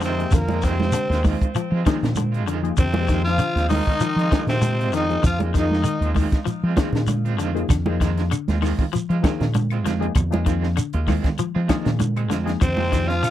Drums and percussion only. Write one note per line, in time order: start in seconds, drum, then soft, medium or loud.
0.01 snare soft
0.01 closed hi-hat medium
0.01 shekere soft
0.20 closed hi-hat soft
0.31 kick loud
0.31 snare soft
0.31 closed hi-hat medium
0.31 low conga medium
0.31 shekere loud
0.48 closed hi-hat soft
0.48 high conga loud
0.62 kick medium
0.62 snare soft
0.62 closed hi-hat medium
0.62 shekere soft
0.80 snare soft
0.80 high conga medium
0.92 closed hi-hat medium
0.92 shekere loud
1.12 snare soft
1.12 closed hi-hat soft
1.24 kick medium
1.24 open hi-hat medium
1.24 high conga medium
1.24 shekere soft
1.42 kick medium
1.42 closed hi-hat soft
1.55 closed hi-hat medium
1.55 shekere loud
1.86 kick medium
1.86 snare medium
1.86 closed hi-hat medium
1.86 high conga loud
1.86 shekere soft
2.03 snare medium
2.03 closed hi-hat soft
2.03 low conga medium
2.15 closed hi-hat medium
2.15 high conga medium
2.15 shekere medium
2.34 closed hi-hat soft
2.47 closed hi-hat medium
2.47 shekere soft
2.65 closed hi-hat soft
2.77 kick loud
2.77 closed hi-hat medium
2.77 low conga medium
2.77 shekere loud
2.94 high conga loud
3.07 kick medium
3.07 snare soft
3.07 closed hi-hat medium
3.07 shekere soft
3.26 snare soft
3.26 closed hi-hat soft
3.38 closed hi-hat medium
3.38 shekere loud
3.57 snare soft
3.57 closed hi-hat soft
3.69 open hi-hat medium
3.69 high conga medium
3.69 shekere soft
3.87 kick medium
3.87 low conga medium
4.00 closed hi-hat medium
4.00 shekere loud
4.19 closed hi-hat soft
4.32 kick medium
4.32 snare medium
4.32 closed hi-hat medium
4.32 high conga medium
4.32 shekere soft
4.47 snare medium
4.47 closed hi-hat soft
4.47 low conga medium
4.62 closed hi-hat medium
4.62 high conga medium
4.62 shekere medium
4.81 closed hi-hat soft
4.92 snare soft
4.92 closed hi-hat medium
4.92 shekere soft
5.10 closed hi-hat soft
5.23 kick loud
5.23 closed hi-hat medium
5.23 low conga medium
5.23 shekere loud
5.40 closed hi-hat soft
5.40 high conga loud
5.55 kick medium
5.55 snare soft
5.55 closed hi-hat medium
5.55 shekere soft
5.71 snare soft
5.71 high conga medium
5.84 closed hi-hat medium
5.84 shekere medium
6.02 closed hi-hat soft
6.15 kick medium
6.15 open hi-hat medium
6.15 high conga medium
6.15 shekere soft
6.32 kick medium
6.32 snare soft
6.32 closed hi-hat soft
6.47 closed hi-hat medium
6.47 shekere medium
6.77 kick medium
6.77 snare medium
6.77 closed hi-hat medium
6.77 high conga loud
6.77 shekere soft
6.93 snare medium
6.93 closed hi-hat soft
6.93 low conga medium
7.07 closed hi-hat medium
7.07 high conga medium
7.07 shekere medium
7.26 closed hi-hat soft
7.39 closed hi-hat medium
7.39 shekere soft
7.57 closed hi-hat soft
7.69 kick loud
7.69 snare soft
7.69 closed hi-hat medium
7.69 low conga medium
7.69 claves medium
7.69 shekere loud
7.86 high conga loud
8.01 kick medium
8.01 snare soft
8.01 closed hi-hat medium
8.01 shekere soft
8.17 snare soft
8.17 closed hi-hat soft
8.31 closed hi-hat medium
8.31 claves medium
8.31 shekere loud
8.48 snare soft
8.48 closed hi-hat soft
8.48 high conga medium
8.63 open hi-hat medium
8.63 high conga medium
8.63 claves medium
8.63 shekere soft
8.79 kick medium
8.79 low conga medium
8.93 closed hi-hat medium
8.93 shekere medium
9.10 closed hi-hat soft
9.24 kick medium
9.24 snare medium
9.24 closed hi-hat medium
9.24 high conga loud
9.24 claves medium
9.24 shekere soft
9.40 snare medium
9.40 closed hi-hat soft
9.40 low conga medium
9.54 closed hi-hat medium
9.54 high conga medium
9.54 shekere loud
9.70 closed hi-hat soft
9.70 claves medium
9.86 snare soft
9.86 closed hi-hat medium
9.86 high conga medium
9.86 shekere soft
10.02 closed hi-hat soft
10.15 kick loud
10.15 closed hi-hat medium
10.15 low conga medium
10.15 claves medium
10.15 shekere medium
10.32 closed hi-hat soft
10.32 high conga loud
10.46 kick medium
10.46 closed hi-hat medium
10.46 shekere soft
10.63 snare soft
10.77 closed hi-hat medium
10.77 claves medium
10.77 shekere loud
10.93 closed hi-hat soft
11.07 kick medium
11.07 open hi-hat medium
11.07 high conga medium
11.07 claves medium
11.07 shekere soft
11.24 kick medium
11.24 snare soft
11.24 closed hi-hat soft
11.24 low conga medium
11.38 closed hi-hat medium
11.38 shekere medium
11.69 kick medium
11.69 snare medium
11.69 closed hi-hat medium
11.69 high conga loud
11.69 claves medium
11.69 shekere soft
11.85 snare medium
11.85 closed hi-hat soft
11.85 low conga loud
11.99 closed hi-hat medium
11.99 high conga medium
11.99 shekere loud
12.16 closed hi-hat soft
12.16 claves medium
12.31 snare soft
12.31 closed hi-hat medium
12.31 high conga medium
12.31 shekere soft
12.47 snare soft
12.47 closed hi-hat soft
12.61 kick loud
12.61 closed hi-hat medium
12.61 low conga medium
12.61 claves medium
12.61 shekere loud
12.77 high conga medium
12.93 kick medium
12.93 snare soft
12.93 closed hi-hat medium
12.93 shekere soft
13.10 snare soft
13.10 closed hi-hat soft
13.23 closed hi-hat medium
13.23 claves medium
13.23 shekere loud